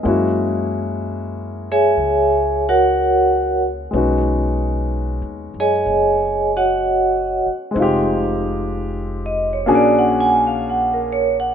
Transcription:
X:1
M:4/4
L:1/16
Q:"Swing" 1/4=63
K:Gblyd
V:1 name="Vibraphone"
z6 [Ad_fa]4 [GBdg]4 z2 | z6 [^G^c^d^g]4 [^Fcd^f]4 z2 | z6 e d =d ^f a =f ^f B ^c f |]
V:2 name="Grand piano"
[A,B,D_FG]16 | [^G,=B,^C^D^F]16 | [A,CEF=G]8 [B,^C=D^FA]8 |]
V:3 name="Upright bass" clef=bass
G,,8 D,,8 | =B,,,4- (3B,,,2 ^D,,2 ^F,,2 ^F,,,6 z2 | F,,,8 B,,,8 |]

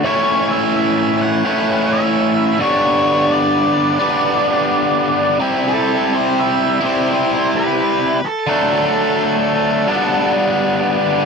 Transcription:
X:1
M:4/4
L:1/8
Q:"Swing" 1/4=85
K:Glyd
V:1 name="Lead electric guitar"
c e e f2 e2 c- | c d6 z | A =c e c c B2 A- | A4- A z3 |]
V:2 name="Overdriven electric guitar" clef=bass
[A,,E,A,CE]4 [A,,E,A,CE]3 [G,,D,G,B,D]- | [G,,D,G,B,D]3 [G,,D,G,B,D]4 [=C,G,=CE]- | [=C,G,=CE]3 [C,G,CE]4 z | [D,F,A,D]4 [G,,D,G,B,D]4 |]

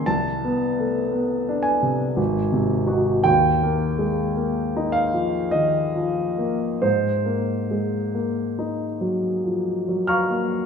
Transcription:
X:1
M:3/4
L:1/8
Q:1/4=52
K:Abmix
V:1 name="Grand piano"
=a3 _a3 | [K:Ab] g3 f e2 | c4 z [fbd'f'] |]
V:2 name="Grand piano" clef=bass
(3C,, _C =A, (3C =D =C, (3_A,,, C, [EG] | [K:Ab] (3E,, B, A, (3B, E F, (3E, F, B, | (3A,, B, A, (3B, E _G, (3F, G, B, |]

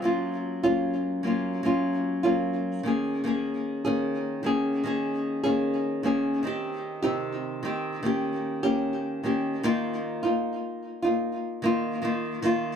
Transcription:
X:1
M:4/4
L:1/16
Q:1/4=75
K:Ebmix
V:1 name="Nylon-string guitar"
[_G,B,DF]3 [G,B,DF]3 [G,B,DF]2 [G,B,DF]3 [G,B,DF]3 [E,B,DA]2 | [E,B,DA]3 [E,B,DA]3 [E,B,DA]2 [E,B,DA]3 [E,B,DA]3 [E,B,DA]2 | [E,CEG]3 [C,E,CEG]3 [E,CEG]2 [E,B,DG]3 [E,B,DG]3 [E,B,DG]2 | [E,B,EF]3 [B,EF]4 [B,EF]3 [E,B,EF]2 [E,B,EF]2 [E,B,EF]2 |]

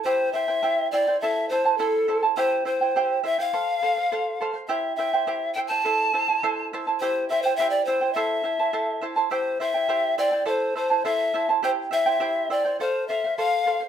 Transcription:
X:1
M:2/4
L:1/16
Q:1/4=104
K:C
V:1 name="Pan flute"
c2 e4 d2 | e2 c2 A3 z | c2 c4 e f- | f6 z2 |
e2 e4 g a- | a6 z2 | c2 e c e d c2 | e6 z2 |
c2 e4 d2 | c2 c2 e3 z | c2 e4 d2 | c2 e2 f3 z |]
V:2 name="Charango"
[EGceg]2 [Eceg] [Ecg] [EGceg]2 [Eceg] [Ecg] | [EAcea]2 [Ecea] [Eca] [EAcea]2 [Ecea] [Eca] | [EGceg]2 [Eceg] [Ecg] [EGceg]2 [Eceg] [Ecg] | [Acf]2 [Acf] [cf] [Acf]2 [Acf] [cf] |
[EGceg]2 [Eceg] [Ecg] [EGceg]2 [Eceg] [Ecg] | [EAcea]2 [Ecea] [Eca] [EAcea]2 [Ecea] [Eca] | [EGceg]2 [Eceg] [Ecg] [EGceg]2 [Eceg] [Ecg] | [EAcea]2 [Ecea] [Eca] [EAcea]2 [Ecea] [Eca] |
[EGceg]2 [Eceg] [Ecg] [EGceg]2 [Eceg] [Ecg] | [EAcea]2 [Ecea] [Eca] [EAcea]2 [Ecea] [Eca] | [EGceg]2 [Eceg] [Ecg] [EGceg]2 [Eceg] [Ecg] | [Acf]2 [Acf] [cf] [Acf]2 [Acf] [cf] |]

